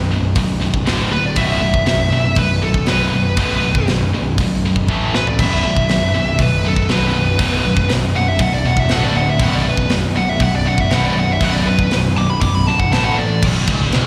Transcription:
0.11 picked electric bass B0, distorted electric guitar B1 F#2
0.35 picked electric bass B0, distorted electric guitar B1 F#2, kick, open hi-hat
0.61 picked electric bass B0, distorted electric guitar B1 F#2
0.74 kick
0.86 picked electric bass D1, distorted electric guitar D2 A2 D3, snare, open hi-hat
1.12 picked electric bass D1, distorted electric guitar D2 A2, lead electric guitar B4
1.26 lead electric guitar D5
1.36 picked electric bass B0, distorted electric guitar B1 F#2 B2, lead electric guitar E5, kick, open hi-hat
1.62 picked electric bass B0, distorted electric guitar B1 F#2
1.74 kick
1.86 picked electric bass B0, distorted electric guitar B1 F#2, snare, open hi-hat
2.12 picked electric bass B0, distorted electric guitar B1 F#2
2.35 picked electric bass B0, distorted electric guitar B1 F#2, lead electric guitar B4, kick, open hi-hat
2.62 distorted electric guitar B1 F#2, lead electric guitar A4
2.74 kick
2.86 picked electric bass B0, distorted electric guitar B1 F#2 B2, lead electric guitar B4, snare, open hi-hat
3.13 picked electric bass B0, distorted electric guitar B1 F#2
3.37 picked electric bass B0, distorted electric guitar B1 F#2 B2, kick, open hi-hat
3.64 picked electric bass B0, distorted electric guitar B1 F#2
3.75 kick
3.87 picked electric bass B0, distorted electric guitar B1 F#2, snare, open hi-hat
4.14 picked electric bass B0, distorted electric guitar B1 F#2
4.38 picked electric bass B0, distorted electric guitar B1 F#2, kick, open hi-hat
4.65 picked electric bass B0, distorted electric guitar B1 F#2
4.76 kick
4.88 picked electric bass A1, distorted electric guitar A2 E3, kick
4.93 distorted electric guitar A3
5.15 picked electric bass A1, distorted electric guitar A2 E3, lead electric guitar B4, snare
5.27 lead electric guitar D5, floor tom
5.39 picked electric bass B0, distorted electric guitar B1 F#2 B2, lead electric guitar E5, kick, crash, splash
5.66 picked electric bass B0, distorted electric guitar B1 F#2
5.77 kick
5.89 picked electric bass B0, distorted electric guitar B1 F#2, snare, open hi-hat
6.14 picked electric bass B0, distorted electric guitar B1 F#2
6.39 picked electric bass B0, distorted electric guitar B1 F#2, lead electric guitar B4, kick, open hi-hat
6.63 distorted electric guitar B1 F#2 B2
6.68 lead electric guitar A4
6.76 kick
6.89 picked electric bass B0, distorted electric guitar B1 F#2 B2, lead electric guitar B4, snare, open hi-hat
7.16 picked electric bass B0, distorted electric guitar B1 F#2
7.39 picked electric bass B0, distorted electric guitar B1 F#2 B2, kick, open hi-hat
7.65 picked electric bass B0, distorted electric guitar B1 F#2
7.77 kick
7.89 picked electric bass B0, distorted electric guitar B1 F#2, snare, open hi-hat
8.15 picked electric bass B0, distorted electric guitar B1 F#2, lead electric guitar F#5
8.28 lead electric guitar E5
8.39 picked electric bass B0, distorted electric guitar B1 F#2, lead electric guitar F#5, kick, open hi-hat
8.54 lead electric guitar D5
8.64 picked electric bass E1, distorted electric guitar B1 F#2 B2, lead electric guitar F#5
8.77 lead electric guitar E5, kick
8.89 picked electric bass D1, distorted electric guitar D2 A2 D3, lead electric guitar F#5, snare, open hi-hat
9.04 lead electric guitar D5
9.14 picked electric bass D1, distorted electric guitar D2 A2, lead electric guitar F#5
9.30 lead electric guitar E5
9.39 picked electric bass B0, distorted electric guitar B1 F#2 B2, lead electric guitar F#5, kick, open hi-hat
9.55 lead electric guitar D5
9.65 picked electric bass B0, distorted electric guitar B1 F#2, lead electric guitar B4
9.77 kick
9.89 picked electric bass B0, distorted electric guitar B1 F#2, snare, open hi-hat
10.15 picked electric bass B0, distorted electric guitar B1 F#2, lead electric guitar F#5
10.29 lead electric guitar E5
10.40 picked electric bass B0, distorted electric guitar B1 F#2, lead electric guitar F#5, kick, open hi-hat
10.56 lead electric guitar D5
10.65 distorted electric guitar B1 F#2 B2, lead electric guitar F#5
10.78 lead electric guitar E5, kick
10.89 picked electric bass B0, distorted electric guitar B1 F#2, lead electric guitar F#5, snare, open hi-hat
10.93 distorted electric guitar B2
11.05 lead electric guitar D5
11.15 picked electric bass B0, distorted electric guitar B1 F#2
11.19 lead electric guitar F#5
11.33 lead electric guitar E5
11.41 picked electric bass B0, distorted electric guitar B1 F#2 B2, lead electric guitar F#5, kick, open hi-hat
11.54 lead electric guitar D5
11.65 picked electric bass B0, distorted electric guitar B1 F#2, lead electric guitar B4
11.79 kick
11.90 picked electric bass B0, distorted electric guitar B1 F#2, snare, open hi-hat
12.16 picked electric bass B0, distorted electric guitar B1 F#2, lead electric guitar D6
12.30 lead electric guitar B5
12.41 picked electric bass B0, distorted electric guitar B1 F#2, lead electric guitar D6, kick, open hi-hat
12.55 lead electric guitar B5
12.66 picked electric bass B0, distorted electric guitar B1 F#2 B2, lead electric guitar A5
12.79 lead electric guitar F#5, kick
12.92 picked electric bass A1, distorted electric guitar A2 E3 A3, lead electric guitar A5, snare, open hi-hat
13.05 lead electric guitar F#5
13.17 picked electric bass A1, distorted electric guitar A2 E3, lead electric guitar D5
13.42 picked electric bass B0, distorted electric guitar B1, analog synth pad B3 F#4 B4 D5, kick, crash
13.68 picked electric bass C#1, distorted electric guitar C#2, kick, ride
13.92 picked electric bass B0, distorted electric guitar B1, snare, ride

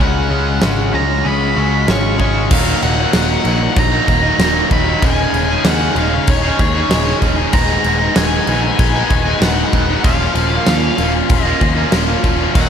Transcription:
Already playing: overdriven electric guitar C#3
0.00 picked electric bass C#2, string section C#3 C#4 G#4 F#5, overdriven electric guitar G#3 C#4, lead electric guitar F#5
0.29 picked electric bass C#2, overdriven electric guitar C#3 G#3 C#4
0.61 picked electric bass G#1, overdriven electric guitar C#3 G#3 C#4, snare
0.93 picked electric bass C#2, overdriven electric guitar C#3 G#3 C#4, lead electric guitar A#5
1.24 picked electric bass C#2, overdriven electric guitar C#3 G#3 C#4, clean electric guitar G#4, lead electric guitar B5
1.55 picked electric bass C#2, overdriven electric guitar C#3 G#3 C#4, clean electric guitar F#4
1.88 picked electric bass G#1, overdriven electric guitar C#3 G#3 C#4, lead electric guitar C#6, snare
2.19 picked electric bass G#1, overdriven electric guitar C#3 G#3 C#4, clean electric guitar G#4, kick
2.50 picked electric bass D#1, overdriven electric guitar D#2 A#2 D#3 F#3 A#3 D#4, string section A#3 D#4 F#4 D#5, lead electric guitar F5, kick, crash
2.81 picked electric bass D#1, overdriven electric guitar D#3 F#3 A#3 D#4, lead electric guitar F#5, crash
2.97 overdriven electric guitar D#3 F#3 A#3 D#4
3.13 picked electric bass D#1, overdriven electric guitar D#2 A#2 D#3 F#3 A#3 D#4, snare, crash
3.44 picked electric bass A#1, overdriven electric guitar D#3 F#3 A#3 D#4, crash
3.60 overdriven electric guitar D#3 F#3 A#3 D#4, muted overdriven electric guitar stroke
3.76 picked electric bass A#1, lead electric guitar A#5, kick, crash
3.91 overdriven electric guitar D#3 F#3 A#3 D#4
4.07 picked electric bass D#1, overdriven electric guitar D#3 F#3 A#3 D#4, muted overdriven electric guitar stroke, kick, crash
4.22 overdriven electric guitar D#3 F#3 A#3 D#4
4.38 picked electric bass D#1, overdriven electric guitar D#2 A#2 D#3 F#3 A#3 D#4, snare, crash
4.54 overdriven electric guitar D#3 F#3 A#3 D#4
4.70 picked electric bass D#1, overdriven electric guitar D#3 F#3 A#3 D#4, lead electric guitar B5, kick, crash
4.86 overdriven electric guitar D#3 F#3 A#3 D#4
5.01 picked electric bass D#1, overdriven electric guitar C#3 G#3 C#4 D#4 G#4, string section G#4 C#5 D#5, lead electric guitar G#5, kick, crash
5.32 picked electric bass D#1, overdriven electric guitar G#3 C#4 D#4 G#4, crash
5.48 overdriven electric guitar C#4 D#4 G#4
5.64 picked electric bass D#2, overdriven electric guitar C#3 G#3 C#4 D#4 G#4, lead electric guitar F#5, snare, crash
5.95 picked electric bass D#1, overdriven electric guitar G#3 C#4 D#4 G#4, lead electric guitar F5, crash
6.11 overdriven electric guitar C#4 D#4 G#4, muted overdriven electric guitar stroke
6.27 picked electric bass D#1, lead electric guitar C#5, kick, crash
6.42 overdriven electric guitar C#4 D#4 G#4
6.57 picked electric bass D#2, overdriven electric guitar G#3 C#4 D#4 G#4, muted overdriven electric guitar stroke, kick, crash
6.72 overdriven electric guitar C#4 D#4 G#4
6.88 picked electric bass D#1, overdriven electric guitar C#3 G#3 C#4 D#4 G#4, snare, crash
7.04 overdriven electric guitar C#4 D#4 G#4
7.22 picked electric bass D#1, overdriven electric guitar G#3 C#4 D#4 G#4, kick, crash
7.36 overdriven electric guitar C#4 D#4 G#4
7.51 picked electric bass D#1, overdriven electric guitar G#2 D#3 G#3 B3 D#4, string section B4 G#5, lead electric guitar A#5, kick, crash
7.83 picked electric bass D#1, overdriven electric guitar D#3 G#3 B3 D#4, crash
7.98 overdriven electric guitar G#3 B3 D#4
8.14 picked electric bass D#1, overdriven electric guitar G#2 D#3 G#3 B3 D#4, lead electric guitar G#5, snare, crash
8.46 picked electric bass A#1, overdriven electric guitar D#3 G#3 B3 D#4, crash
8.62 overdriven electric guitar G#3 B3 D#4, muted overdriven electric guitar stroke
8.79 picked electric bass A#1, lead electric guitar G#5, kick, crash
8.93 overdriven electric guitar G#3 B3 D#4
9.08 picked electric bass D#1, overdriven electric guitar D#3 G#3 B3 D#4, muted overdriven electric guitar stroke, kick, crash
9.24 overdriven electric guitar G#3 B3 D#4
9.40 picked electric bass D#1, overdriven electric guitar G#2 D#3 G#3 B3 D#4, lead electric guitar F#5, snare, crash
9.55 overdriven electric guitar G#3 B3 D#4
9.73 picked electric bass D#1, overdriven electric guitar D#3 G#3 B3 D#4, kick, crash
9.87 overdriven electric guitar G#3 B3 D#4
10.02 picked electric bass D#1, overdriven electric guitar A#2 F3 A#3 C#4 F4, string section A#3 C#4 F4 F5, lead electric guitar F5, kick, crash
10.34 picked electric bass D#1, overdriven electric guitar F3 A#3 C#4 F4, crash
10.50 overdriven electric guitar A#3 C#4 F4
10.66 picked electric bass D#2, overdriven electric guitar A#2 F3 A#3 C#4 F4, snare, crash
10.97 picked electric bass D#1, overdriven electric guitar F3 A#3 C#4 F4, crash
11.13 overdriven electric guitar A#3 C#4 F4, muted overdriven electric guitar stroke
11.30 picked electric bass D#1, kick, crash
11.44 overdriven electric guitar A#3 C#4 F4, lead electric guitar D#5
11.59 picked electric bass D#2, overdriven electric guitar F3 A#3 C#4 F4, muted overdriven electric guitar stroke, kick, crash
11.75 overdriven electric guitar A#3 C#4 F4
11.90 picked electric bass D#1, overdriven electric guitar A#2 F3 A#3 C#4 F4, snare, crash
12.06 overdriven electric guitar A#3 C#4 F4
12.23 picked electric bass D#1, overdriven electric guitar F3 A#3 C#4 F4, kick, crash
12.36 overdriven electric guitar A#3 C#4 F4
12.52 picked electric bass D#1, overdriven electric guitar D#2 A#2 D#3 F#3 A#3 D#4, string section D#4 F#4 F#5, lead electric guitar F#5, kick, crash

